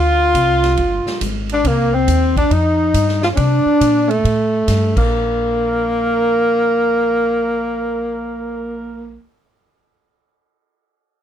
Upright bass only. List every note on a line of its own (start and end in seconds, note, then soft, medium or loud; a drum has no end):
0.00 0.33 D2 medium
0.34 0.76 C2 medium
0.77 1.04 G1 medium
1.06 muted upright bass stroke soft
1.21 1.63 G#1 medium
1.64 2.06 C2 medium
2.07 2.49 D#2 medium
2.51 2.93 F2 medium
2.94 3.36 G2 medium
3.37 3.64 C3 medium
3.66 muted upright bass stroke soft
3.81 4.23 A#2 medium
4.24 4.66 A2 medium
4.68 4.95 G2 medium
4.96 9.16 A#1 medium